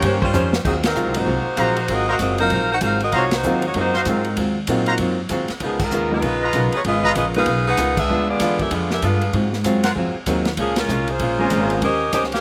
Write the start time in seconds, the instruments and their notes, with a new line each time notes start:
Already playing: trombone section A#3 C#4 G4, trumpet section F4 A#4 C#5 G5
0.02 upright bass G2, hollow-body jazz guitar D#3 C#4 G4, kick, ride
0.06 hollow-body jazz guitar C5
0.22 saxophone section G3 C#4 F4 C5, kick
0.33 upright bass F2, hollow-body jazz guitar D#3 C#4 G4 C5, hi-hat pedal
0.53 snare
0.64 upright bass D#2, hollow-body jazz guitar G#2 F#3 C4 F4, saxophone section F#3 C4 D#4 G#4, kick, crash
0.83 saxophone section F#3 C4 D#4 A#4, snare, ride
0.95 upright bass C#2, hollow-body jazz guitar G#2 F#3 C4 F4, hi-hat pedal
1.06 upright bass C2
1.14 upright bass G#1, grand piano F#3 A#3 C4 D#4 F4, saxophone section A#3 D#4 F#4 C5, ride
1.25 upright bass C2, hollow-body jazz guitar G#2 F#3 C4 F4, kick
1.56 upright bass A#1, hollow-body jazz guitar G#2 F#3 C4 F4, trumpet section F#4 C5 F5 A#5, kick, hi-hat pedal, ride
1.76 ride
1.88 upright bass G#1, hollow-body jazz guitar G#2 F#3 C4 F4, saxophone section C4 F#4 A#4 D#5, kick, ride
2.08 saxophone section C4 F#4 A#4 D#5, trumpet section F#4 C5 F5 A#5
2.19 upright bass F#1, hollow-body jazz guitar G#2 F#3 C4 F4, saxophone section C4 F#4 A#4 D#5, kick, hi-hat pedal, ride
2.38 grand piano F#3 A#3 C4 D#4 F4, saxophone section D#4 A#4 C5 F5, ride
2.50 upright bass A#1, hollow-body jazz guitar G#2 F#3 C4 F4, kick, ride
2.72 saxophone section D#4 A#4 C5 F#5
2.81 upright bass G#1, hollow-body jazz guitar G#2 F#3 C4 F4, saxophone section D#4 A#4 C5 F5, kick, hi-hat pedal, ride
3.00 saxophone section C4 F#4 A#4 D#5, ride
3.12 upright bass C2, hollow-body jazz guitar G#2 F#3 C4 F4, saxophone section A#3 D#4 F#4 C#5, trumpet section F#4 C5 F5 A#5, kick, ride
3.31 saxophone section A#3 D#4 F#4 C5, snare, ride
3.43 upright bass D#2, hollow-body jazz guitar G#2 F#3 C4 F4, grand piano F#3 A#3 C4 D#4 F4, hi-hat pedal
3.62 saxophone section A#3 D#4 F#4 C#5, ride
3.74 upright bass F#2, hollow-body jazz guitar G#2 F#3 C4, grand piano F#3 A#3 C4 D#4 F#4, saxophone section A#3 D#4 F#4 C5, kick, ride
3.79 hollow-body jazz guitar F4
3.93 trumpet section F#4 C5 F5 C6, snare
4.05 upright bass G#2, hollow-body jazz guitar G#2 F#3 C4 F4, saxophone section F#3 C4 D#4 A#4, kick, hi-hat pedal, ride
4.24 ride
4.36 upright bass D#2, hollow-body jazz guitar G#2 F#3 C4 F4, kick, ride
4.67 hollow-body jazz guitar G#2 F#3 C4 F4, upright bass A#2, grand piano F#3 A#3 C4 D#4 F4, kick, hi-hat pedal, ride
4.86 trumpet section F#4 C5 F5 A#5, ride
4.98 upright bass F#2, hollow-body jazz guitar G#2 F#3 C4, kick, ride
5.02 hollow-body jazz guitar F4
5.29 upright bass D#2, hollow-body jazz guitar G#2 F#3 C4 F4, kick, hi-hat pedal, ride
5.48 muted upright bass stroke, snare, ride
5.60 upright bass C#2, hollow-body jazz guitar C#3 B3 F4, saxophone section F3 B3 D#4 G#4, kick, ride
5.64 hollow-body jazz guitar A#4
5.79 saxophone section G#3 D#4 F4 A#4, kick, crash
5.91 upright bass D#2, hollow-body jazz guitar C#3 B3 F4 A#4, hi-hat pedal
6.11 grand piano G#3 A#3 B3 D#4 F4, saxophone section G#3 D#4 F4 B4
6.22 upright bass A#1, hollow-body jazz guitar C#3 B3 F4 A#4, kick, ride
6.42 trumpet section F4 B4 D#5 A#5
6.53 upright bass B1, hollow-body jazz guitar C#3 B3 F4 A#4, kick, hi-hat pedal, ride
6.72 saxophone section B3 F4 G#4 C#5, ride
6.84 upright bass G#1, hollow-body jazz guitar C#3 B3 F4 A#4, saxophone section B3 F4 G#4 D#5, kick, ride
7.04 trumpet section F4 B4 D#5 A#5, kick
7.15 upright bass A#1, hollow-body jazz guitar C#3 B3 F4 A#4, saxophone section B3 F4 G#4 D#5, kick, hi-hat pedal, ride
7.34 grand piano G#3 A#3 B3 D#4 F4, saxophone section D#4 G#4 B4 F5, ride
7.46 upright bass B1, hollow-body jazz guitar C#3 B3 F4, kick, ride
7.50 hollow-body jazz guitar A#4
7.67 saxophone section D#4 G#4 B4 F#5
7.77 upright bass C#2, hollow-body jazz guitar C#3 B3 F4 A#4, kick, hi-hat pedal, ride
7.97 saxophone section D4 G#4 B4 E5, kick, crash
8.09 upright bass D2, hollow-body jazz guitar D3 G#3 B3 F4, grand piano D3 G#3 B3 D4 F4
8.29 saxophone section B3 F4 G#4 D5
8.40 upright bass E2, hollow-body jazz guitar D3 G#3 B3 F4, kick, snare, hi-hat pedal, ride
8.59 saxophone section C#4 G4 A#4 E5, kick, ride
8.71 upright bass F2, hollow-body jazz guitar D3 G#3 B3 F4, saxophone section B3 F4 G#4 D5, kick, ride
8.91 saxophone section C#4 G4 A#4 E5, snare
9.02 upright bass G2, hollow-body jazz guitar D3 G#3 B3 F4, saxophone section D4 G#4 B4 F5, kick, hi-hat pedal, ride
9.21 ride
9.33 hollow-body jazz guitar G#2 F#3 C4 F4, upright bass G#2, kick, ride
9.53 snare
9.64 upright bass F#2, hollow-body jazz guitar G#2 F#3 C4 F4, kick, hi-hat pedal, ride
9.84 trumpet section F4 A#4 C5 F#5, snare, ride
9.95 upright bass F2, hollow-body jazz guitar G#2 F#3 C4 F4, kick
10.14 muted upright bass stroke
10.26 upright bass D#2, hollow-body jazz guitar G#2 F#3 C4 F4, grand piano F#3 A#3 C4 D#4 F4, kick, hi-hat pedal, ride
10.45 snare, ride
10.57 upright bass C#2, hollow-body jazz guitar A#2 G#3 C#4 F4, saxophone section F3 A#3 C#4 G#4, kick, ride
10.76 saxophone section G#3 C#4 F4 A#4, snare, ride
10.88 upright bass C2, hollow-body jazz guitar A#2 G#3 C#4 F4, hi-hat pedal
11.07 saxophone section A#3 F4 G#4 C5, ride
11.19 upright bass A#1, hollow-body jazz guitar A#2 G#3 C#4 F4, kick, ride
11.39 grand piano G#3 A#3 C4 C#4 F4, trumpet section C#4 F4 A#4 G#5
11.50 upright bass G#1, hollow-body jazz guitar A#2 G#3 C#4 F4, kick, hi-hat pedal, ride
11.70 ride
11.82 upright bass D#2, hollow-body jazz guitar D#3 C#4 G4 C5, saxophone section C#4 G4 A#4 D#5, kick, ride
12.13 upright bass C#2, hollow-body jazz guitar D#3 C#4 G4 C5, saxophone section C#4 G4 A#4 D#5, kick, hi-hat pedal, ride
12.24 snare
12.32 saxophone section C#4 G4 A#4 F5, snare, ride